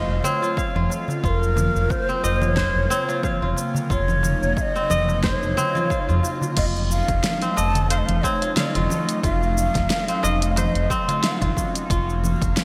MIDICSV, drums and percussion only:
0, 0, Header, 1, 3, 480
1, 0, Start_track
1, 0, Tempo, 666667
1, 892, Time_signature, 4, 2, 24, 8
1, 9101, End_track
2, 0, Start_track
2, 0, Title_t, "Darbuka"
2, 164, Note_on_c, 9, 64, 81
2, 236, Note_off_c, 9, 64, 0
2, 649, Note_on_c, 9, 62, 66
2, 721, Note_off_c, 9, 62, 0
2, 777, Note_on_c, 9, 64, 85
2, 783, Note_on_c, 9, 63, 50
2, 849, Note_off_c, 9, 64, 0
2, 855, Note_off_c, 9, 63, 0
2, 1021, Note_on_c, 9, 63, 36
2, 1093, Note_off_c, 9, 63, 0
2, 1126, Note_on_c, 9, 64, 76
2, 1127, Note_on_c, 9, 63, 70
2, 1198, Note_off_c, 9, 64, 0
2, 1199, Note_off_c, 9, 63, 0
2, 1609, Note_on_c, 9, 62, 66
2, 1681, Note_off_c, 9, 62, 0
2, 1739, Note_on_c, 9, 63, 57
2, 1811, Note_off_c, 9, 63, 0
2, 2222, Note_on_c, 9, 63, 56
2, 2294, Note_off_c, 9, 63, 0
2, 2567, Note_on_c, 9, 62, 64
2, 2639, Note_off_c, 9, 62, 0
2, 2697, Note_on_c, 9, 64, 86
2, 2769, Note_off_c, 9, 64, 0
2, 2937, Note_on_c, 9, 63, 38
2, 3009, Note_off_c, 9, 63, 0
2, 3045, Note_on_c, 9, 63, 76
2, 3053, Note_on_c, 9, 64, 78
2, 3117, Note_off_c, 9, 63, 0
2, 3125, Note_off_c, 9, 64, 0
2, 3534, Note_on_c, 9, 62, 75
2, 3606, Note_off_c, 9, 62, 0
2, 3662, Note_on_c, 9, 63, 58
2, 3734, Note_off_c, 9, 63, 0
2, 4013, Note_on_c, 9, 64, 83
2, 4085, Note_off_c, 9, 64, 0
2, 4487, Note_on_c, 9, 62, 70
2, 4559, Note_off_c, 9, 62, 0
2, 4618, Note_on_c, 9, 64, 79
2, 4622, Note_on_c, 9, 63, 50
2, 4690, Note_off_c, 9, 64, 0
2, 4694, Note_off_c, 9, 63, 0
2, 5447, Note_on_c, 9, 62, 71
2, 5449, Note_on_c, 9, 63, 80
2, 5519, Note_off_c, 9, 62, 0
2, 5521, Note_off_c, 9, 63, 0
2, 5579, Note_on_c, 9, 64, 88
2, 5651, Note_off_c, 9, 64, 0
2, 5928, Note_on_c, 9, 63, 73
2, 6000, Note_off_c, 9, 63, 0
2, 6165, Note_on_c, 9, 64, 97
2, 6237, Note_off_c, 9, 64, 0
2, 6301, Note_on_c, 9, 64, 93
2, 6373, Note_off_c, 9, 64, 0
2, 6406, Note_on_c, 9, 62, 63
2, 6478, Note_off_c, 9, 62, 0
2, 7365, Note_on_c, 9, 63, 91
2, 7369, Note_on_c, 9, 62, 72
2, 7437, Note_off_c, 9, 63, 0
2, 7441, Note_off_c, 9, 62, 0
2, 7605, Note_on_c, 9, 63, 90
2, 7677, Note_off_c, 9, 63, 0
2, 7979, Note_on_c, 9, 64, 88
2, 7984, Note_on_c, 9, 63, 67
2, 8051, Note_off_c, 9, 64, 0
2, 8055, Note_off_c, 9, 63, 0
2, 8218, Note_on_c, 9, 64, 91
2, 8290, Note_off_c, 9, 64, 0
2, 8332, Note_on_c, 9, 62, 62
2, 8404, Note_off_c, 9, 62, 0
2, 9101, End_track
3, 0, Start_track
3, 0, Title_t, "Drums"
3, 180, Note_on_c, 9, 82, 73
3, 252, Note_off_c, 9, 82, 0
3, 312, Note_on_c, 9, 82, 29
3, 384, Note_off_c, 9, 82, 0
3, 411, Note_on_c, 9, 36, 95
3, 423, Note_on_c, 9, 82, 42
3, 483, Note_off_c, 9, 36, 0
3, 495, Note_off_c, 9, 82, 0
3, 548, Note_on_c, 9, 64, 80
3, 620, Note_off_c, 9, 64, 0
3, 661, Note_on_c, 9, 82, 67
3, 733, Note_off_c, 9, 82, 0
3, 793, Note_on_c, 9, 82, 32
3, 865, Note_off_c, 9, 82, 0
3, 891, Note_on_c, 9, 36, 99
3, 900, Note_on_c, 9, 82, 38
3, 963, Note_off_c, 9, 36, 0
3, 972, Note_off_c, 9, 82, 0
3, 1031, Note_on_c, 9, 82, 28
3, 1103, Note_off_c, 9, 82, 0
3, 1130, Note_on_c, 9, 64, 72
3, 1136, Note_on_c, 9, 82, 67
3, 1202, Note_off_c, 9, 64, 0
3, 1208, Note_off_c, 9, 82, 0
3, 1268, Note_on_c, 9, 82, 33
3, 1340, Note_off_c, 9, 82, 0
3, 1370, Note_on_c, 9, 36, 96
3, 1376, Note_on_c, 9, 82, 39
3, 1442, Note_off_c, 9, 36, 0
3, 1448, Note_off_c, 9, 82, 0
3, 1505, Note_on_c, 9, 82, 28
3, 1577, Note_off_c, 9, 82, 0
3, 1616, Note_on_c, 9, 82, 77
3, 1688, Note_off_c, 9, 82, 0
3, 1740, Note_on_c, 9, 64, 79
3, 1747, Note_on_c, 9, 82, 32
3, 1812, Note_off_c, 9, 64, 0
3, 1819, Note_off_c, 9, 82, 0
3, 1849, Note_on_c, 9, 36, 98
3, 1849, Note_on_c, 9, 38, 70
3, 1856, Note_on_c, 9, 82, 42
3, 1921, Note_off_c, 9, 36, 0
3, 1921, Note_off_c, 9, 38, 0
3, 1928, Note_off_c, 9, 82, 0
3, 2097, Note_on_c, 9, 82, 73
3, 2169, Note_off_c, 9, 82, 0
3, 2227, Note_on_c, 9, 82, 29
3, 2299, Note_off_c, 9, 82, 0
3, 2328, Note_on_c, 9, 36, 91
3, 2331, Note_on_c, 9, 64, 80
3, 2337, Note_on_c, 9, 82, 41
3, 2400, Note_off_c, 9, 36, 0
3, 2403, Note_off_c, 9, 64, 0
3, 2409, Note_off_c, 9, 82, 0
3, 2576, Note_on_c, 9, 82, 67
3, 2648, Note_off_c, 9, 82, 0
3, 2709, Note_on_c, 9, 82, 32
3, 2781, Note_off_c, 9, 82, 0
3, 2808, Note_on_c, 9, 36, 100
3, 2817, Note_on_c, 9, 82, 44
3, 2880, Note_off_c, 9, 36, 0
3, 2889, Note_off_c, 9, 82, 0
3, 2940, Note_on_c, 9, 64, 79
3, 2946, Note_on_c, 9, 82, 28
3, 3012, Note_off_c, 9, 64, 0
3, 3018, Note_off_c, 9, 82, 0
3, 3054, Note_on_c, 9, 82, 70
3, 3126, Note_off_c, 9, 82, 0
3, 3189, Note_on_c, 9, 82, 29
3, 3261, Note_off_c, 9, 82, 0
3, 3289, Note_on_c, 9, 36, 92
3, 3296, Note_on_c, 9, 82, 44
3, 3361, Note_off_c, 9, 36, 0
3, 3368, Note_off_c, 9, 82, 0
3, 3426, Note_on_c, 9, 82, 28
3, 3498, Note_off_c, 9, 82, 0
3, 3528, Note_on_c, 9, 64, 84
3, 3535, Note_on_c, 9, 82, 75
3, 3600, Note_off_c, 9, 64, 0
3, 3607, Note_off_c, 9, 82, 0
3, 3667, Note_on_c, 9, 82, 32
3, 3739, Note_off_c, 9, 82, 0
3, 3769, Note_on_c, 9, 36, 101
3, 3770, Note_on_c, 9, 38, 77
3, 3776, Note_on_c, 9, 82, 40
3, 3841, Note_off_c, 9, 36, 0
3, 3842, Note_off_c, 9, 38, 0
3, 3848, Note_off_c, 9, 82, 0
3, 3909, Note_on_c, 9, 82, 28
3, 3981, Note_off_c, 9, 82, 0
3, 4019, Note_on_c, 9, 82, 69
3, 4091, Note_off_c, 9, 82, 0
3, 4142, Note_on_c, 9, 64, 73
3, 4148, Note_on_c, 9, 82, 31
3, 4214, Note_off_c, 9, 64, 0
3, 4220, Note_off_c, 9, 82, 0
3, 4250, Note_on_c, 9, 36, 91
3, 4257, Note_on_c, 9, 82, 43
3, 4322, Note_off_c, 9, 36, 0
3, 4329, Note_off_c, 9, 82, 0
3, 4387, Note_on_c, 9, 82, 31
3, 4459, Note_off_c, 9, 82, 0
3, 4497, Note_on_c, 9, 82, 69
3, 4569, Note_off_c, 9, 82, 0
3, 4628, Note_on_c, 9, 82, 34
3, 4700, Note_off_c, 9, 82, 0
3, 4728, Note_on_c, 9, 42, 55
3, 4728, Note_on_c, 9, 49, 102
3, 4730, Note_on_c, 9, 36, 115
3, 4734, Note_on_c, 9, 82, 44
3, 4800, Note_off_c, 9, 42, 0
3, 4800, Note_off_c, 9, 49, 0
3, 4802, Note_off_c, 9, 36, 0
3, 4806, Note_off_c, 9, 82, 0
3, 4867, Note_on_c, 9, 82, 29
3, 4939, Note_off_c, 9, 82, 0
3, 4977, Note_on_c, 9, 82, 73
3, 5049, Note_off_c, 9, 82, 0
3, 5100, Note_on_c, 9, 36, 97
3, 5101, Note_on_c, 9, 42, 43
3, 5107, Note_on_c, 9, 82, 31
3, 5172, Note_off_c, 9, 36, 0
3, 5173, Note_off_c, 9, 42, 0
3, 5179, Note_off_c, 9, 82, 0
3, 5210, Note_on_c, 9, 38, 105
3, 5210, Note_on_c, 9, 42, 61
3, 5210, Note_on_c, 9, 64, 75
3, 5217, Note_on_c, 9, 82, 43
3, 5282, Note_off_c, 9, 38, 0
3, 5282, Note_off_c, 9, 42, 0
3, 5282, Note_off_c, 9, 64, 0
3, 5289, Note_off_c, 9, 82, 0
3, 5339, Note_on_c, 9, 42, 29
3, 5346, Note_on_c, 9, 82, 31
3, 5411, Note_off_c, 9, 42, 0
3, 5418, Note_off_c, 9, 82, 0
3, 5457, Note_on_c, 9, 82, 85
3, 5529, Note_off_c, 9, 82, 0
3, 5583, Note_on_c, 9, 42, 47
3, 5589, Note_on_c, 9, 82, 34
3, 5655, Note_off_c, 9, 42, 0
3, 5661, Note_off_c, 9, 82, 0
3, 5691, Note_on_c, 9, 42, 59
3, 5698, Note_on_c, 9, 82, 44
3, 5763, Note_off_c, 9, 42, 0
3, 5770, Note_off_c, 9, 82, 0
3, 5822, Note_on_c, 9, 42, 32
3, 5822, Note_on_c, 9, 64, 76
3, 5894, Note_off_c, 9, 42, 0
3, 5894, Note_off_c, 9, 64, 0
3, 5930, Note_on_c, 9, 36, 63
3, 5938, Note_on_c, 9, 82, 76
3, 6002, Note_off_c, 9, 36, 0
3, 6010, Note_off_c, 9, 82, 0
3, 6063, Note_on_c, 9, 42, 41
3, 6070, Note_on_c, 9, 82, 30
3, 6135, Note_off_c, 9, 42, 0
3, 6142, Note_off_c, 9, 82, 0
3, 6170, Note_on_c, 9, 38, 105
3, 6170, Note_on_c, 9, 42, 57
3, 6176, Note_on_c, 9, 82, 47
3, 6242, Note_off_c, 9, 38, 0
3, 6242, Note_off_c, 9, 42, 0
3, 6248, Note_off_c, 9, 82, 0
3, 6302, Note_on_c, 9, 42, 32
3, 6374, Note_off_c, 9, 42, 0
3, 6410, Note_on_c, 9, 64, 75
3, 6417, Note_on_c, 9, 82, 71
3, 6482, Note_off_c, 9, 64, 0
3, 6489, Note_off_c, 9, 82, 0
3, 6542, Note_on_c, 9, 42, 49
3, 6549, Note_on_c, 9, 82, 32
3, 6614, Note_off_c, 9, 42, 0
3, 6621, Note_off_c, 9, 82, 0
3, 6649, Note_on_c, 9, 36, 117
3, 6653, Note_on_c, 9, 42, 52
3, 6659, Note_on_c, 9, 82, 45
3, 6721, Note_off_c, 9, 36, 0
3, 6725, Note_off_c, 9, 42, 0
3, 6731, Note_off_c, 9, 82, 0
3, 6789, Note_on_c, 9, 82, 31
3, 6861, Note_off_c, 9, 82, 0
3, 6896, Note_on_c, 9, 82, 80
3, 6968, Note_off_c, 9, 82, 0
3, 7020, Note_on_c, 9, 36, 106
3, 7021, Note_on_c, 9, 38, 31
3, 7021, Note_on_c, 9, 42, 45
3, 7021, Note_on_c, 9, 64, 78
3, 7028, Note_on_c, 9, 82, 34
3, 7092, Note_off_c, 9, 36, 0
3, 7093, Note_off_c, 9, 38, 0
3, 7093, Note_off_c, 9, 42, 0
3, 7093, Note_off_c, 9, 64, 0
3, 7100, Note_off_c, 9, 82, 0
3, 7129, Note_on_c, 9, 38, 107
3, 7129, Note_on_c, 9, 42, 56
3, 7136, Note_on_c, 9, 82, 45
3, 7201, Note_off_c, 9, 38, 0
3, 7201, Note_off_c, 9, 42, 0
3, 7208, Note_off_c, 9, 82, 0
3, 7261, Note_on_c, 9, 42, 30
3, 7267, Note_on_c, 9, 82, 31
3, 7333, Note_off_c, 9, 42, 0
3, 7339, Note_off_c, 9, 82, 0
3, 7377, Note_on_c, 9, 82, 83
3, 7449, Note_off_c, 9, 82, 0
3, 7503, Note_on_c, 9, 42, 45
3, 7510, Note_on_c, 9, 82, 31
3, 7575, Note_off_c, 9, 42, 0
3, 7582, Note_off_c, 9, 82, 0
3, 7612, Note_on_c, 9, 42, 59
3, 7612, Note_on_c, 9, 64, 80
3, 7619, Note_on_c, 9, 82, 46
3, 7684, Note_off_c, 9, 42, 0
3, 7684, Note_off_c, 9, 64, 0
3, 7691, Note_off_c, 9, 82, 0
3, 7743, Note_on_c, 9, 42, 31
3, 7815, Note_off_c, 9, 42, 0
3, 7849, Note_on_c, 9, 36, 66
3, 7856, Note_on_c, 9, 82, 80
3, 7921, Note_off_c, 9, 36, 0
3, 7928, Note_off_c, 9, 82, 0
3, 7983, Note_on_c, 9, 42, 43
3, 7990, Note_on_c, 9, 82, 31
3, 8055, Note_off_c, 9, 42, 0
3, 8062, Note_off_c, 9, 82, 0
3, 8090, Note_on_c, 9, 38, 99
3, 8090, Note_on_c, 9, 42, 58
3, 8097, Note_on_c, 9, 82, 45
3, 8162, Note_off_c, 9, 38, 0
3, 8162, Note_off_c, 9, 42, 0
3, 8169, Note_off_c, 9, 82, 0
3, 8219, Note_on_c, 9, 36, 102
3, 8222, Note_on_c, 9, 42, 33
3, 8222, Note_on_c, 9, 64, 80
3, 8291, Note_off_c, 9, 36, 0
3, 8294, Note_off_c, 9, 42, 0
3, 8294, Note_off_c, 9, 64, 0
3, 8328, Note_on_c, 9, 36, 64
3, 8336, Note_on_c, 9, 82, 79
3, 8400, Note_off_c, 9, 36, 0
3, 8408, Note_off_c, 9, 82, 0
3, 8463, Note_on_c, 9, 42, 46
3, 8470, Note_on_c, 9, 82, 35
3, 8535, Note_off_c, 9, 42, 0
3, 8542, Note_off_c, 9, 82, 0
3, 8568, Note_on_c, 9, 36, 119
3, 8572, Note_on_c, 9, 42, 54
3, 8579, Note_on_c, 9, 82, 47
3, 8640, Note_off_c, 9, 36, 0
3, 8644, Note_off_c, 9, 42, 0
3, 8651, Note_off_c, 9, 82, 0
3, 8709, Note_on_c, 9, 82, 33
3, 8781, Note_off_c, 9, 82, 0
3, 8811, Note_on_c, 9, 64, 66
3, 8817, Note_on_c, 9, 82, 76
3, 8883, Note_off_c, 9, 64, 0
3, 8889, Note_off_c, 9, 82, 0
3, 8940, Note_on_c, 9, 36, 111
3, 8944, Note_on_c, 9, 42, 44
3, 8950, Note_on_c, 9, 82, 37
3, 9012, Note_off_c, 9, 36, 0
3, 9016, Note_off_c, 9, 42, 0
3, 9022, Note_off_c, 9, 82, 0
3, 9050, Note_on_c, 9, 38, 108
3, 9050, Note_on_c, 9, 42, 53
3, 9057, Note_on_c, 9, 82, 47
3, 9101, Note_off_c, 9, 38, 0
3, 9101, Note_off_c, 9, 42, 0
3, 9101, Note_off_c, 9, 82, 0
3, 9101, End_track
0, 0, End_of_file